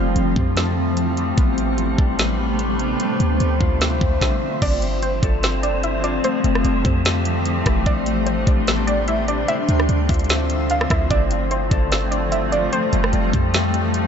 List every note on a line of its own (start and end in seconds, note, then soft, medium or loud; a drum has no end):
0.00 0.15 F1 loud
0.00 1.36 E3 medium
0.00 1.34 F3 loud
0.00 2.97 G3 medium
0.00 0.56 A3 medium
0.00 1.34 A3 medium
0.00 1.34 C4 medium
0.00 1.44 C4 medium
0.00 1.24 F4 medium
0.00 2.97 G4 medium
0.00 0.94 A4 medium
0.00 1.36 E5 medium
0.00 1.36 A5 medium
0.16 0.35 F1 loud
0.16 closed hi-hat medium
0.36 1.34 F2 loud
0.36 2.72 G4 medium
0.36 kick loud
0.57 3.90 A3 medium
0.57 snare loud
0.57 closed hi-hat medium
0.97 closed hi-hat medium
1.17 3.67 E4 medium
1.17 closed hi-hat medium
1.38 1.96 A1 loud
1.38 2.98 C3 medium
1.38 4.19 A3 medium
1.38 2.98 B3 medium
1.38 1.57 B3 medium
1.38 2.98 D4 medium
1.38 2.98 D5 medium
1.38 2.98 B5 medium
1.38 4.59 C6 medium
1.38 kick loud
1.38 closed hi-hat medium
1.57 2.18 B3 medium
1.57 closed hi-hat medium
1.78 closed hi-hat medium
1.98 2.96 A1 loud
1.98 4.78 D4 medium
1.98 kick loud
2.19 3.07 B3 medium
2.19 snare loud
2.19 closed hi-hat medium
2.59 closed hi-hat medium
2.79 3.00 C4 medium
2.79 closed hi-hat medium
3.00 4.20 D3 medium
3.00 4.20 F3 medium
3.00 4.20 C4 medium
3.00 3.20 C4 loud
3.00 4.60 F4 medium
3.00 4.60 E5 medium
3.00 4.20 E5 medium
3.00 closed hi-hat medium
3.20 3.40 D2 loud
3.20 3.80 C4 medium
3.20 closed hi-hat medium
3.40 3.60 D2 loud
3.40 closed hi-hat medium
3.61 4.00 D2 loud
3.61 6.04 F4 medium
3.61 kick loud
3.81 4.62 C4 medium
3.81 snare loud
3.81 closed hi-hat medium
4.01 4.21 D2 loud
4.01 kick loud
4.21 kick loud
4.21 snare medium
4.62 5.20 G1 loud
4.62 6.23 D3 medium
4.62 7.83 F3 medium
4.62 9.45 G3 medium
4.62 9.44 A3 medium
4.62 4.82 C4 medium
4.62 6.23 C4 medium
4.62 6.22 F4 medium
4.62 6.22 C5 medium
4.62 5.00 D5 loud
4.62 6.22 A5 medium
4.62 kick loud
4.62 closed hi-hat medium
4.62 crash loud
4.82 5.43 C4 medium
4.82 closed hi-hat medium
5.02 5.60 C5 medium
5.02 closed hi-hat medium
5.23 6.20 G1 loud
5.23 7.43 A4 medium
5.23 kick loud
5.23 closed hi-hat medium
5.43 7.86 C4 medium
5.43 snare loud
5.43 closed hi-hat medium
5.63 5.82 D5 medium
5.63 closed hi-hat medium
5.83 6.03 E5 medium
5.83 closed hi-hat medium
6.04 7.72 F4 medium
6.04 6.23 D5 medium
6.04 closed hi-hat medium
6.24 7.85 E3 medium
6.24 6.44 A3 medium
6.24 7.85 C4 medium
6.24 9.45 G4 medium
6.24 7.82 C5 loud
6.24 7.85 E5 medium
6.24 7.85 A5 medium
6.24 closed hi-hat medium
6.44 6.64 F1 loud
6.44 7.05 A3 medium
6.44 closed hi-hat medium
6.55 cross-stick medium
6.65 6.84 F1 loud
6.65 closed hi-hat medium
6.85 7.63 F2 loud
6.85 9.21 G4 medium
6.85 kick loud
6.85 closed hi-hat medium
7.05 8.06 A3 medium
7.05 snare loud
7.05 closed hi-hat medium
7.25 closed hi-hat medium
7.45 closed hi-hat medium
7.66 7.85 F1 loud
7.66 10.15 E4 medium
7.66 kick loud
7.66 cross-stick medium
7.66 closed hi-hat medium
7.86 8.45 A1 loud
7.86 9.47 C3 medium
7.86 9.28 C4 loud
7.86 9.47 D4 loud
7.86 9.47 D5 medium
7.86 8.25 D5 loud
7.86 9.47 B5 medium
7.86 9.47 C6 medium
7.86 kick loud
7.86 closed hi-hat medium
8.06 11.39 A3 medium
8.06 closed hi-hat medium
8.27 8.84 C5 medium
8.27 closed hi-hat medium
8.47 9.44 A1 loud
8.47 11.27 D4 medium
8.47 kick loud
8.47 closed hi-hat medium
8.67 9.55 B3 medium
8.67 snare loud
8.67 closed hi-hat medium
8.87 9.07 D5 medium
8.87 closed hi-hat medium
9.08 9.27 E5 medium
9.08 closed hi-hat medium
9.28 9.49 C4 medium
9.28 9.48 D5 medium
9.28 closed hi-hat medium
9.48 12.70 D3 medium
9.48 11.09 F3 medium
9.48 14.07 A3 medium
9.48 14.07 C4 medium
9.48 9.68 C4 loud
9.48 12.70 F4 medium
9.48 10.66 E5 loud
9.48 11.09 E5 medium
9.48 11.09 C6 medium
9.48 closed hi-hat medium
9.69 9.88 D2 loud
9.69 10.29 C4 medium
9.69 closed hi-hat medium
9.80 cross-stick medium
9.89 10.08 D2 loud
9.89 closed hi-hat medium
10.09 10.87 D2 loud
10.09 12.52 F4 medium
10.09 kick loud
10.09 closed hi-hat medium
10.09 open hi-hat medium
10.14 closed hi-hat medium
10.19 closed hi-hat medium
10.24 closed hi-hat soft
10.29 11.10 C4 medium
10.29 snare loud
10.29 closed hi-hat medium
10.50 closed hi-hat medium
10.70 10.90 F5 medium
10.70 closed hi-hat medium
10.81 cross-stick loud
10.90 11.10 D2 loud
10.90 12.59 E4 medium
10.90 11.10 E5 medium
10.90 kick loud
10.90 cross-stick loud
10.90 closed hi-hat medium
11.10 11.69 G1 loud
11.10 14.07 F3 medium
11.10 14.07 G3 medium
11.10 11.30 C4 loud
11.10 12.71 C5 medium
11.10 11.49 D5 medium
11.10 14.07 A5 medium
11.10 kick loud
11.10 closed hi-hat medium
11.31 11.91 C4 medium
11.31 closed hi-hat medium
11.51 12.08 C5 medium
11.51 closed hi-hat medium
11.71 12.69 G1 loud
11.71 13.91 A4 medium
11.71 kick loud
11.71 closed hi-hat medium
11.92 14.07 C4 medium
11.92 snare loud
11.92 closed hi-hat medium
12.11 12.31 D5 medium
12.11 closed hi-hat medium
12.32 12.51 E5 medium
12.32 closed hi-hat medium
12.52 14.07 F4 medium
12.52 12.72 D5 medium
12.52 closed hi-hat medium
12.72 14.07 E3 medium
12.72 12.93 A3 medium
12.72 14.07 G4 medium
12.72 14.07 C5 loud
12.72 14.07 E5 medium
12.72 closed hi-hat medium
12.93 13.12 F1 loud
12.93 13.54 A3 medium
12.93 closed hi-hat medium
13.04 cross-stick medium
13.13 13.33 F1 loud
13.13 closed hi-hat medium
13.33 14.07 F2 loud
13.33 14.07 G4 medium
13.33 kick loud
13.33 closed hi-hat medium
13.54 14.07 A3 medium
13.54 snare loud
13.54 closed hi-hat medium
13.74 closed hi-hat medium
13.94 closed hi-hat medium